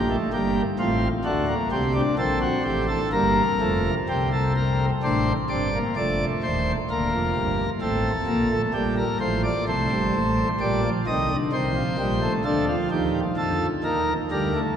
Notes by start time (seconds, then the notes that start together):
Already playing: A#1 A#2 G4
0.10 A3
0.33 G1 G2 A#3 G4
0.79 A1 A2 C4 F4
1.24 D2 D3 A3 F#4
1.48 A#3
1.71 C2 C3 C4 G4
1.95 D4
2.18 A#1 A#2 C4 A4
2.42 F#4
2.64 A1 A2 G4
2.88 A4
3.12 G1 G2 A#3 A#4
3.60 F1 F2 A3
4.09 C2 C3 C4 G4
4.33 A4
4.56 A#4
5.03 A1 A2 D4 C5
5.49 G1 G2 C4 D5
5.74 A#3
5.96 F1 F2 A3 D5
6.43 D#1 D#2 C5
6.90 D1 D2 A#3 A#4
7.12 F1 F2
7.35 G1 G2
7.81 A1 A2 C4 A4
8.27 A#1 A#2 A#3
8.51 A3
8.74 A#1 A#2 G3 G4
8.97 A#4
9.20 A1 A2 F3 C5
9.44 D5
9.68 C2 C3 A3 C5
9.91 G1 G2
10.15 A1 A2
10.60 A#1 A#2 G3 D5
10.85 F3
11.07 C2 C3 D#3 D#5
11.30 D3
11.52 C2 C3 D#3 C5
11.76 F3
11.98 A#1 A#2 G3
12.22 A3
12.44 D2 D3 F3 A4
12.68 F4
12.91 D#2 D#3 G4
13.37 F2 F3 A4
13.84 D#2 D#3 A#4
14.31 D2 D3 G3 A#4
14.54 A3